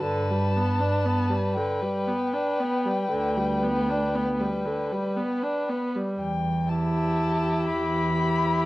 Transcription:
0.01 cello G2, viola D3, violin B4 A5
0.31 viola G3
0.56 viola B3
0.80 viola D4
1.05 viola B3
1.29 viola G3
1.55 viola D3, violin G5
1.82 viola G3
2.07 viola B3
2.33 viola D4
2.60 viola B3
2.85 viola G3
3.11 cello D2, viola D3
3.37 viola G3
3.63 viola B3
3.90 viola D4
4.15 viola B3
4.40 viola G3
4.66 viola D3
4.92 viola G3
5.17 viola B3
5.43 viola D4
5.69 viola B3
5.95 viola G3
6.20 cello E2, violin G5
6.69 viola E4, violin G4 A5
7.68 cello E2, violin B5
8.18 viola E4, violin G4

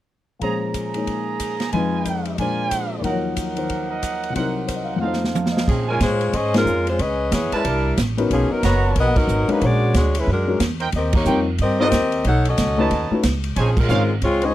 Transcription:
0.39 grand piano A#2 F3 G#3 C#4, trumpet section G#4 A#5, kick, ride
0.44 grand piano C5
0.74 kick, hi-hat pedal, ride
0.94 grand piano G#3 A#3 D#4 C#5, ride
1.07 kick, ride
1.40 kick, hi-hat pedal, ride
1.60 snare, ride
1.72 grand piano F2 F3 G#3 D#4 B4, trumpet section F4 B4 D#5 G#5, kick, ride
2.05 kick, hi-hat pedal, ride
2.25 ride
2.37 grand piano A#2 F3 G#3 D4, trumpet section F4 A#4 D5 G#5, kick, ride
2.42 grand piano C5
2.71 kick, hi-hat pedal, ride
3.00 grand piano D#2 D#3
3.04 grand piano F#3, trumpet section D#4 A#4 F#5, kick, ride
3.08 grand piano F3 C#5
3.37 kick, hi-hat pedal, ride
3.55 grand piano D#3 D#4 C5, ride
3.69 kick, ride
3.90 trumpet section A#4 D#5
4.03 kick, hi-hat pedal, ride
4.23 ride
4.30 grand piano C2 C3
4.35 grand piano F#3 D#4, trumpet section D#4 A#4 C5 F#5, kick, ride
4.41 grand piano A#4
4.68 grand piano C5, kick, hi-hat pedal, ride
4.76 grand piano D#5
4.85 grand piano F5
4.93 grand piano F2 F#5
4.99 grand piano F3 A3, trumpet section D#4 A4 C5 F5
5.04 grand piano D#4 C5
5.13 snare
5.24 snare
5.34 grand piano F5, trumpet section A5, hi-hat pedal, high tom
5.45 trumpet section C6, snare
5.52 grand piano D#5
5.56 trumpet section D#6, snare
5.68 upright bass A#2, saxophone section F3 C4 C#4 G#4, kick, crash
5.87 saxophone section G#3 C#4 F4 A#4, trumpet section D#4 C5 C#5 G#5
6.00 upright bass A2, saxophone section G#3 F4 C5 C#5, kick, snare, hi-hat pedal, ride
6.21 ride
6.33 upright bass G#2, saxophone section C#4 G#4 C5 D#5, kick, ride
6.54 grand piano G#3 C#4 D#4 F4 C5, saxophone section G#3 C#4 F4 A#4, snare, ride
6.65 upright bass F2, hi-hat pedal
6.87 saxophone section G#3 C#4 F4 C5, ride
6.99 upright bass C#2, saxophone section C#4 G#4 B4 D#5, kick, ride
7.32 upright bass E2, saxophone section B3 E4 G#4 C#5, kick, snare, hi-hat pedal, ride
7.52 saxophone section G#3 C#4 E4 B4, trumpet section E4 A#4 D5 A5, muted upright bass stroke, ride
7.65 upright bass C2, saxophone section G3 D4 E4 A#4, kick, ride
7.97 upright bass A1, kick, snare, hi-hat pedal, ride
8.17 grand piano B3 C#4 D#4 F#4 A#4, ride
8.30 upright bass B1, saxophone section F3 A#3 C#4 G#4, kick, ride
8.50 saxophone section F#3 B3 D#4 A#4, muted upright bass stroke
8.63 upright bass F#1, trumpet section B3 F#4 D#5 A#5, saxophone section B3 F#4 A#4 C#5, kick, snare, hi-hat pedal, ride
8.96 upright bass B1, saxophone section B3 F#4 A#4 D#5, kick, ride
9.05 upright bass A#1
9.16 upright bass F#1, saxophone section F#3 B3 D#4 A#4, kick, crash
9.28 upright bass G#1, hi-hat pedal
9.48 saxophone section F#3 A#3 D#4 B4, grand piano G#3 C#4 D4 F#4 A#4, muted upright bass stroke, ride
9.61 upright bass A#1, saxophone section G#3 F#4 C#5 D5, kick, ride
9.94 upright bass D2, saxophone section G#3 D4 F#4 C#5, kick, snare, hi-hat pedal, ride
10.15 saxophone section G#3 C#4 E4 B4, ride
10.27 upright bass F#2, saxophone section G#3 D4 F#4 A#4, kick
10.47 grand piano G#3 C#4 D4 F#4 A#4
10.60 upright bass E2, kick, snare, hi-hat pedal, ride
10.80 trumpet section D#4 A#4 C5 G5, ride
10.92 upright bass D#2, saxophone section C4 G4 A#4 D#5, kick, ride
11.13 saxophone section A#3 D#4 G4 C#5, kick, crash
11.25 upright bass F2, grand piano G3 C4 D#4 F4 A#4, trumpet section D#4 A#4 C5 G5, hi-hat pedal
11.58 upright bass G2, saxophone section C4 G4 A#4 D#5, kick, ride
11.79 grand piano G3 C4 D#4 F4 C5, saxophone section C4 G4 A#4 D#5, trumpet section D#4 A#4 C5 D#5
11.92 upright bass D#2, kick, snare, hi-hat pedal, ride
12.12 ride
12.24 upright bass B1, saxophone section D#4 A4 C#5 F#5, kick, ride
12.45 saxophone section C#4 F#4 A4 D#5, ride
12.58 upright bass C#2, kick, snare, hi-hat pedal, ride
12.77 grand piano A3 C#4 D#4 F#4 B4, trumpet section D#4 B4 C#5 A5
12.91 upright bass D#2, kick, ride
13.10 grand piano A3 C#4 D#4 F#4 B4, muted upright bass stroke
13.23 upright bass C#2, kick, snare, hi-hat pedal, ride
13.44 ride
13.56 upright bass A#1, saxophone section F3 C4 C#4 G#4, trumpet section D#4 C5 C#5 G#5, kick, ride
13.77 saxophone section G#3 C#4 F4 A#4, kick, crash
13.89 upright bass G#1, grand piano G#3 C#4 D#4 F4 C5, trumpet section D#4 C5 C#5 F5, hi-hat pedal
14.22 upright bass C#2, saxophone section G#3 C4 F4 C#5, kick, ride
14.42 grand piano G#3 C#4 D#4 F4 C5, saxophone section C#4 G#4 C5 D#5, ride

